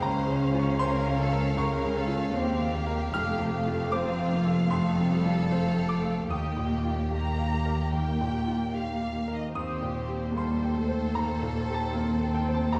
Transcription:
0.00 1.53 C#2 medium
0.00 2.31 C#2 medium
0.00 1.55 C#4 medium
0.00 0.80 C5 medium
0.00 3.10 F5 medium
0.00 0.57 A#5 medium
0.26 0.69 C#3 medium
0.53 0.96 F4 medium
0.59 0.78 C#6 medium
0.79 1.19 A#4 medium
0.79 1.22 C5 medium
0.79 1.54 C6 loud
1.07 1.48 F5 medium
1.18 1.57 A4 medium
1.33 1.74 A#4 medium
1.57 2.32 C#2 medium
1.57 2.33 C#4 medium
1.57 1.96 A#4 medium
1.57 2.70 C#6 loud
1.84 2.25 C#3 soft
1.95 2.35 A4 medium
2.07 2.50 F4 medium
2.34 3.13 D#2 medium
2.34 2.74 C4 medium
2.34 2.77 C4 medium
2.34 3.92 G4 medium
2.61 3.03 F5 medium
2.72 3.13 A#3 medium
2.86 3.13 A#4 medium
3.12 6.31 F1 medium
3.12 4.67 F2 medium
3.12 6.31 F2 medium
3.12 3.90 A3 medium
3.12 3.52 F5 medium
3.12 3.89 F6 loud
3.39 3.81 C3 medium
3.53 5.47 F5 medium
3.66 4.08 F4 soft
3.91 4.32 C4 medium
3.91 4.70 F4 medium
3.91 4.34 C5 medium
3.91 4.67 D6 medium
4.19 4.61 F5 soft
4.32 4.71 A#3 medium
4.45 4.87 A4 medium
4.70 6.27 F2 soft
4.70 5.10 A3 medium
4.70 6.31 A4 medium
4.70 5.87 C6 medium
4.98 5.41 C3 soft
5.10 5.50 G3 medium
5.25 5.67 F4 soft
5.50 5.88 A3 medium
5.50 5.94 C5 soft
5.50 6.29 F5 medium
5.79 6.21 F5 soft
5.89 6.30 A3 medium
5.89 6.27 D6 medium
6.04 6.31 A4 soft
6.29 9.30 D#2 medium
6.29 7.89 D#2 soft
6.29 9.31 D#2 medium
6.29 9.30 A#3 medium
6.29 9.30 G4 medium
6.29 7.02 G5 soft
6.29 8.70 D#6 medium
6.56 7.00 A#2 soft
6.84 7.28 F4 soft
7.10 7.55 G4 soft
7.10 7.90 A#5 medium
7.38 7.82 F5 soft
7.66 8.09 A#4 soft
7.93 9.51 D#2 soft
7.93 8.75 G5 medium
8.21 8.64 A#2 soft
8.46 8.90 F4 soft
8.73 9.17 G4 soft
8.73 9.34 F5 medium
9.01 9.44 F5 soft
9.28 9.55 A#4 soft
9.34 9.55 D#5 soft
9.53 12.80 D#2 medium
9.53 11.11 D#2 soft
9.53 9.92 C4 medium
9.53 10.32 G4 soft
9.53 12.70 C5 medium
9.53 10.32 D#6 medium
9.82 10.25 A#2 soft
9.94 10.34 C4 medium
10.08 10.51 G4 soft
10.35 10.75 G3 medium
10.35 10.78 A#3 soft
10.35 12.74 A4 medium
10.35 11.12 C6 medium
10.63 11.05 G5 soft
10.76 11.15 A3 medium
10.89 11.31 C5 soft
11.14 12.70 D#2 soft
11.14 11.94 A#3 soft
11.14 11.71 A#5 medium
11.42 11.84 A#2 soft
11.70 12.12 G4 soft
11.74 12.30 A5 medium
11.95 12.37 A#3 soft
11.95 12.74 C4 soft
12.21 12.33 G5 soft
12.34 12.53 G5 medium
12.49 12.80 C5 soft
12.54 12.73 A5 medium
12.72 12.80 D#2 medium
12.72 12.80 A#3 medium
12.72 12.80 G4 medium
12.72 12.80 D#5 medium
12.72 12.80 A#5 medium

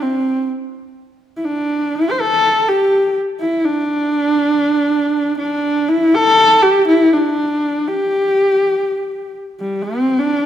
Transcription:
0.02 0.49 C4 medium
1.37 1.47 E4 medium
1.45 1.97 D4 medium
1.96 2.12 E4 medium
2.11 2.22 C5 medium
2.20 2.70 A4 loud
2.68 3.17 G4 medium
3.40 3.66 E4 medium
3.65 5.38 D4 medium
5.39 5.90 D4 medium
5.88 6.16 E4 loud
6.14 6.64 A4 loud
6.62 6.87 G4 loud
6.88 7.15 E4 loud
7.13 7.89 D4 medium
7.88 9.34 G4 medium
9.60 9.84 G3 medium
9.83 10.20 C4 medium
10.19 10.46 D4 medium

